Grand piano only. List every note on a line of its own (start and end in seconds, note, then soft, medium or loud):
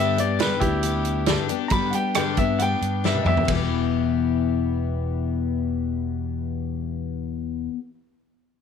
0.00 0.18 E5 medium
0.20 0.40 D5 medium
0.40 0.61 B4 medium
0.60 1.44 E4 medium
0.60 1.46 G4 medium
1.68 1.71 A#5 medium
1.68 1.93 B5 medium
1.90 1.93 F#5 medium
1.95 2.14 G5 medium
2.16 2.37 G5 medium
2.38 2.59 E5 medium
2.59 2.61 F#5 medium
2.59 3.03 G5 medium
3.05 3.26 E5 medium
3.22 3.25 D#5 soft
3.27 3.48 E5 medium